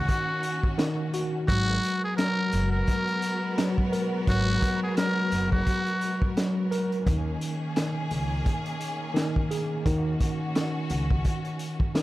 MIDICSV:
0, 0, Header, 1, 6, 480
1, 0, Start_track
1, 0, Key_signature, 5, "minor"
1, 0, Tempo, 697674
1, 1021, Time_signature, 4, 2, 24, 8
1, 8273, End_track
2, 0, Start_track
2, 0, Title_t, "Muted trumpet"
2, 0, Program_c, 0, 59
2, 0, Note_on_c, 0, 66, 78
2, 515, Note_off_c, 0, 66, 0
2, 1020, Note_on_c, 0, 66, 110
2, 1377, Note_off_c, 0, 66, 0
2, 1405, Note_on_c, 0, 68, 75
2, 1490, Note_off_c, 0, 68, 0
2, 1494, Note_on_c, 0, 70, 91
2, 1853, Note_off_c, 0, 70, 0
2, 1868, Note_on_c, 0, 70, 84
2, 2566, Note_off_c, 0, 70, 0
2, 2950, Note_on_c, 0, 66, 110
2, 3302, Note_off_c, 0, 66, 0
2, 3323, Note_on_c, 0, 68, 70
2, 3413, Note_off_c, 0, 68, 0
2, 3424, Note_on_c, 0, 70, 84
2, 3779, Note_off_c, 0, 70, 0
2, 3798, Note_on_c, 0, 66, 82
2, 4353, Note_off_c, 0, 66, 0
2, 8273, End_track
3, 0, Start_track
3, 0, Title_t, "String section"
3, 0, Program_c, 1, 48
3, 0, Note_on_c, 1, 51, 71
3, 0, Note_on_c, 1, 58, 76
3, 0, Note_on_c, 1, 61, 76
3, 0, Note_on_c, 1, 66, 93
3, 994, Note_off_c, 1, 51, 0
3, 994, Note_off_c, 1, 58, 0
3, 1006, Note_off_c, 1, 61, 0
3, 1006, Note_off_c, 1, 66, 0
3, 1015, Note_on_c, 1, 56, 82
3, 1015, Note_on_c, 1, 59, 101
3, 1016, Note_on_c, 1, 66, 77
3, 1016, Note_on_c, 1, 70, 74
3, 4830, Note_off_c, 1, 56, 0
3, 4831, Note_off_c, 1, 59, 0
3, 4831, Note_off_c, 1, 66, 0
3, 4831, Note_off_c, 1, 70, 0
3, 4857, Note_on_c, 1, 51, 75
3, 4858, Note_on_c, 1, 58, 76
3, 4858, Note_on_c, 1, 61, 72
3, 4859, Note_on_c, 1, 68, 95
3, 6761, Note_off_c, 1, 61, 0
3, 6761, Note_off_c, 1, 68, 0
3, 6785, Note_on_c, 1, 61, 78
3, 6785, Note_on_c, 1, 66, 91
3, 8273, Note_off_c, 1, 51, 0
3, 8273, Note_off_c, 1, 58, 0
3, 8273, Note_off_c, 1, 61, 0
3, 8273, Note_off_c, 1, 66, 0
3, 8273, End_track
4, 0, Start_track
4, 0, Title_t, "Tine electric piano"
4, 0, Program_c, 2, 4
4, 0, Control_c, 2, 64, 127
4, 0, Note_on_c, 2, 51, 66
4, 529, Note_off_c, 2, 51, 0
4, 537, Note_on_c, 2, 51, 93
4, 782, Note_on_c, 2, 66, 81
4, 1019, Note_off_c, 2, 51, 0
4, 1020, Note_on_c, 2, 54, 85
4, 1022, Note_off_c, 2, 66, 0
4, 1029, Control_c, 2, 64, 0
4, 1146, Control_c, 2, 64, 127
4, 1491, Note_off_c, 2, 54, 0
4, 1499, Note_on_c, 2, 54, 79
4, 2452, Note_off_c, 2, 54, 0
4, 2461, Note_on_c, 2, 54, 92
4, 2701, Note_on_c, 2, 70, 85
4, 2934, Note_off_c, 2, 54, 0
4, 2942, Note_on_c, 2, 54, 88
4, 3418, Note_off_c, 2, 54, 0
4, 3426, Note_on_c, 2, 54, 80
4, 4141, Note_off_c, 2, 70, 0
4, 4378, Note_off_c, 2, 54, 0
4, 4386, Note_on_c, 2, 54, 87
4, 4619, Note_on_c, 2, 70, 88
4, 4860, Note_off_c, 2, 70, 0
4, 4862, Note_on_c, 2, 51, 90
4, 4864, Note_off_c, 2, 54, 0
4, 4870, Control_c, 2, 64, 0
4, 4995, Control_c, 2, 64, 127
4, 5336, Note_off_c, 2, 51, 0
4, 5344, Note_on_c, 2, 51, 72
4, 6284, Note_off_c, 2, 51, 0
4, 6292, Note_on_c, 2, 51, 98
4, 6542, Note_on_c, 2, 68, 82
4, 6774, Note_off_c, 2, 51, 0
4, 6781, Note_off_c, 2, 68, 0
4, 6783, Note_on_c, 2, 51, 88
4, 6790, Control_c, 2, 64, 0
4, 6904, Control_c, 2, 64, 127
4, 7255, Note_off_c, 2, 51, 0
4, 7263, Note_on_c, 2, 51, 67
4, 8211, Note_off_c, 2, 51, 0
4, 8219, Note_on_c, 2, 51, 92
4, 8273, Note_off_c, 2, 51, 0
4, 8273, End_track
5, 0, Start_track
5, 0, Title_t, "Upright bass"
5, 0, Program_c, 3, 32
5, 1020, Note_on_c, 3, 32, 105
5, 1212, Note_off_c, 3, 32, 0
5, 1742, Note_on_c, 3, 30, 94
5, 1933, Note_off_c, 3, 30, 0
5, 2941, Note_on_c, 3, 32, 109
5, 3132, Note_off_c, 3, 32, 0
5, 3661, Note_on_c, 3, 30, 93
5, 3852, Note_off_c, 3, 30, 0
5, 4862, Note_on_c, 3, 39, 114
5, 5053, Note_off_c, 3, 39, 0
5, 5582, Note_on_c, 3, 37, 93
5, 5773, Note_off_c, 3, 37, 0
5, 6783, Note_on_c, 3, 39, 111
5, 6974, Note_off_c, 3, 39, 0
5, 7503, Note_on_c, 3, 37, 96
5, 7693, Note_off_c, 3, 37, 0
5, 8273, End_track
6, 0, Start_track
6, 0, Title_t, "Drums"
6, 57, Note_on_c, 9, 83, 48
6, 60, Note_on_c, 9, 36, 92
6, 61, Note_on_c, 9, 42, 84
6, 125, Note_off_c, 9, 83, 0
6, 129, Note_off_c, 9, 36, 0
6, 130, Note_off_c, 9, 42, 0
6, 295, Note_on_c, 9, 83, 65
6, 303, Note_on_c, 9, 42, 67
6, 364, Note_off_c, 9, 83, 0
6, 372, Note_off_c, 9, 42, 0
6, 437, Note_on_c, 9, 36, 103
6, 505, Note_off_c, 9, 36, 0
6, 542, Note_on_c, 9, 37, 93
6, 542, Note_on_c, 9, 42, 85
6, 543, Note_on_c, 9, 83, 54
6, 545, Note_on_c, 9, 38, 114
6, 611, Note_off_c, 9, 37, 0
6, 611, Note_off_c, 9, 42, 0
6, 612, Note_off_c, 9, 83, 0
6, 614, Note_off_c, 9, 38, 0
6, 781, Note_on_c, 9, 83, 75
6, 784, Note_on_c, 9, 42, 75
6, 850, Note_off_c, 9, 83, 0
6, 853, Note_off_c, 9, 42, 0
6, 1020, Note_on_c, 9, 36, 116
6, 1020, Note_on_c, 9, 83, 52
6, 1022, Note_on_c, 9, 42, 84
6, 1088, Note_off_c, 9, 83, 0
6, 1089, Note_off_c, 9, 36, 0
6, 1090, Note_off_c, 9, 42, 0
6, 1258, Note_on_c, 9, 83, 69
6, 1268, Note_on_c, 9, 42, 78
6, 1327, Note_off_c, 9, 83, 0
6, 1337, Note_off_c, 9, 42, 0
6, 1500, Note_on_c, 9, 83, 57
6, 1501, Note_on_c, 9, 42, 97
6, 1503, Note_on_c, 9, 37, 96
6, 1506, Note_on_c, 9, 38, 124
6, 1569, Note_off_c, 9, 83, 0
6, 1570, Note_off_c, 9, 42, 0
6, 1572, Note_off_c, 9, 37, 0
6, 1575, Note_off_c, 9, 38, 0
6, 1736, Note_on_c, 9, 83, 73
6, 1740, Note_on_c, 9, 42, 83
6, 1804, Note_off_c, 9, 83, 0
6, 1808, Note_off_c, 9, 42, 0
6, 1976, Note_on_c, 9, 83, 47
6, 1980, Note_on_c, 9, 36, 86
6, 1982, Note_on_c, 9, 42, 86
6, 2045, Note_off_c, 9, 83, 0
6, 2049, Note_off_c, 9, 36, 0
6, 2050, Note_off_c, 9, 42, 0
6, 2118, Note_on_c, 9, 42, 50
6, 2186, Note_off_c, 9, 42, 0
6, 2215, Note_on_c, 9, 83, 68
6, 2225, Note_on_c, 9, 42, 68
6, 2284, Note_off_c, 9, 83, 0
6, 2294, Note_off_c, 9, 42, 0
6, 2463, Note_on_c, 9, 42, 84
6, 2464, Note_on_c, 9, 37, 90
6, 2464, Note_on_c, 9, 83, 55
6, 2467, Note_on_c, 9, 38, 117
6, 2532, Note_off_c, 9, 37, 0
6, 2532, Note_off_c, 9, 42, 0
6, 2533, Note_off_c, 9, 83, 0
6, 2535, Note_off_c, 9, 38, 0
6, 2600, Note_on_c, 9, 36, 88
6, 2669, Note_off_c, 9, 36, 0
6, 2703, Note_on_c, 9, 42, 76
6, 2703, Note_on_c, 9, 83, 74
6, 2771, Note_off_c, 9, 42, 0
6, 2772, Note_off_c, 9, 83, 0
6, 2940, Note_on_c, 9, 36, 117
6, 2940, Note_on_c, 9, 83, 52
6, 2941, Note_on_c, 9, 42, 90
6, 3009, Note_off_c, 9, 36, 0
6, 3009, Note_off_c, 9, 83, 0
6, 3010, Note_off_c, 9, 42, 0
6, 3180, Note_on_c, 9, 36, 96
6, 3180, Note_on_c, 9, 83, 69
6, 3187, Note_on_c, 9, 42, 79
6, 3248, Note_off_c, 9, 83, 0
6, 3249, Note_off_c, 9, 36, 0
6, 3256, Note_off_c, 9, 42, 0
6, 3419, Note_on_c, 9, 42, 99
6, 3421, Note_on_c, 9, 37, 98
6, 3421, Note_on_c, 9, 83, 56
6, 3425, Note_on_c, 9, 38, 127
6, 3488, Note_off_c, 9, 42, 0
6, 3489, Note_off_c, 9, 83, 0
6, 3490, Note_off_c, 9, 37, 0
6, 3493, Note_off_c, 9, 38, 0
6, 3657, Note_on_c, 9, 83, 74
6, 3659, Note_on_c, 9, 42, 84
6, 3726, Note_off_c, 9, 83, 0
6, 3728, Note_off_c, 9, 42, 0
6, 3800, Note_on_c, 9, 36, 101
6, 3869, Note_off_c, 9, 36, 0
6, 3898, Note_on_c, 9, 83, 49
6, 3900, Note_on_c, 9, 36, 86
6, 3900, Note_on_c, 9, 42, 85
6, 3967, Note_off_c, 9, 83, 0
6, 3969, Note_off_c, 9, 36, 0
6, 3969, Note_off_c, 9, 42, 0
6, 4035, Note_on_c, 9, 42, 51
6, 4104, Note_off_c, 9, 42, 0
6, 4136, Note_on_c, 9, 83, 66
6, 4143, Note_on_c, 9, 42, 66
6, 4204, Note_off_c, 9, 83, 0
6, 4212, Note_off_c, 9, 42, 0
6, 4277, Note_on_c, 9, 36, 108
6, 4346, Note_off_c, 9, 36, 0
6, 4382, Note_on_c, 9, 42, 85
6, 4383, Note_on_c, 9, 37, 90
6, 4385, Note_on_c, 9, 83, 55
6, 4386, Note_on_c, 9, 38, 113
6, 4451, Note_off_c, 9, 42, 0
6, 4452, Note_off_c, 9, 37, 0
6, 4454, Note_off_c, 9, 83, 0
6, 4455, Note_off_c, 9, 38, 0
6, 4624, Note_on_c, 9, 42, 80
6, 4624, Note_on_c, 9, 83, 73
6, 4692, Note_off_c, 9, 42, 0
6, 4693, Note_off_c, 9, 83, 0
6, 4762, Note_on_c, 9, 42, 50
6, 4831, Note_off_c, 9, 42, 0
6, 4861, Note_on_c, 9, 36, 116
6, 4861, Note_on_c, 9, 83, 54
6, 4862, Note_on_c, 9, 42, 87
6, 4930, Note_off_c, 9, 36, 0
6, 4930, Note_off_c, 9, 83, 0
6, 4931, Note_off_c, 9, 42, 0
6, 5100, Note_on_c, 9, 83, 72
6, 5109, Note_on_c, 9, 42, 78
6, 5169, Note_off_c, 9, 83, 0
6, 5178, Note_off_c, 9, 42, 0
6, 5340, Note_on_c, 9, 42, 97
6, 5342, Note_on_c, 9, 37, 102
6, 5342, Note_on_c, 9, 83, 56
6, 5345, Note_on_c, 9, 38, 123
6, 5409, Note_off_c, 9, 42, 0
6, 5411, Note_off_c, 9, 37, 0
6, 5411, Note_off_c, 9, 83, 0
6, 5414, Note_off_c, 9, 38, 0
6, 5578, Note_on_c, 9, 83, 74
6, 5580, Note_on_c, 9, 46, 58
6, 5646, Note_off_c, 9, 83, 0
6, 5649, Note_off_c, 9, 46, 0
6, 5820, Note_on_c, 9, 83, 49
6, 5821, Note_on_c, 9, 36, 92
6, 5821, Note_on_c, 9, 42, 83
6, 5889, Note_off_c, 9, 83, 0
6, 5890, Note_off_c, 9, 36, 0
6, 5890, Note_off_c, 9, 42, 0
6, 5956, Note_on_c, 9, 42, 53
6, 6025, Note_off_c, 9, 42, 0
6, 6059, Note_on_c, 9, 83, 67
6, 6064, Note_on_c, 9, 42, 67
6, 6127, Note_off_c, 9, 83, 0
6, 6133, Note_off_c, 9, 42, 0
6, 6303, Note_on_c, 9, 42, 84
6, 6304, Note_on_c, 9, 37, 87
6, 6306, Note_on_c, 9, 83, 53
6, 6307, Note_on_c, 9, 38, 114
6, 6372, Note_off_c, 9, 42, 0
6, 6373, Note_off_c, 9, 37, 0
6, 6375, Note_off_c, 9, 83, 0
6, 6376, Note_off_c, 9, 38, 0
6, 6441, Note_on_c, 9, 36, 94
6, 6510, Note_off_c, 9, 36, 0
6, 6545, Note_on_c, 9, 42, 76
6, 6545, Note_on_c, 9, 83, 73
6, 6614, Note_off_c, 9, 42, 0
6, 6614, Note_off_c, 9, 83, 0
6, 6782, Note_on_c, 9, 36, 111
6, 6783, Note_on_c, 9, 42, 85
6, 6783, Note_on_c, 9, 83, 54
6, 6851, Note_off_c, 9, 36, 0
6, 6851, Note_off_c, 9, 42, 0
6, 6852, Note_off_c, 9, 83, 0
6, 7020, Note_on_c, 9, 83, 71
6, 7022, Note_on_c, 9, 36, 94
6, 7030, Note_on_c, 9, 42, 79
6, 7089, Note_off_c, 9, 83, 0
6, 7090, Note_off_c, 9, 36, 0
6, 7099, Note_off_c, 9, 42, 0
6, 7261, Note_on_c, 9, 42, 94
6, 7262, Note_on_c, 9, 83, 56
6, 7263, Note_on_c, 9, 37, 100
6, 7266, Note_on_c, 9, 38, 125
6, 7330, Note_off_c, 9, 42, 0
6, 7331, Note_off_c, 9, 83, 0
6, 7332, Note_off_c, 9, 37, 0
6, 7335, Note_off_c, 9, 38, 0
6, 7497, Note_on_c, 9, 83, 74
6, 7500, Note_on_c, 9, 42, 82
6, 7565, Note_off_c, 9, 83, 0
6, 7569, Note_off_c, 9, 42, 0
6, 7640, Note_on_c, 9, 36, 102
6, 7709, Note_off_c, 9, 36, 0
6, 7737, Note_on_c, 9, 83, 49
6, 7740, Note_on_c, 9, 36, 88
6, 7742, Note_on_c, 9, 42, 86
6, 7805, Note_off_c, 9, 83, 0
6, 7809, Note_off_c, 9, 36, 0
6, 7810, Note_off_c, 9, 42, 0
6, 7876, Note_on_c, 9, 42, 51
6, 7945, Note_off_c, 9, 42, 0
6, 7976, Note_on_c, 9, 83, 69
6, 7984, Note_on_c, 9, 42, 68
6, 8045, Note_off_c, 9, 83, 0
6, 8052, Note_off_c, 9, 42, 0
6, 8118, Note_on_c, 9, 36, 105
6, 8186, Note_off_c, 9, 36, 0
6, 8223, Note_on_c, 9, 37, 93
6, 8223, Note_on_c, 9, 42, 86
6, 8225, Note_on_c, 9, 83, 56
6, 8226, Note_on_c, 9, 38, 112
6, 8273, Note_off_c, 9, 37, 0
6, 8273, Note_off_c, 9, 38, 0
6, 8273, Note_off_c, 9, 42, 0
6, 8273, Note_off_c, 9, 83, 0
6, 8273, End_track
0, 0, End_of_file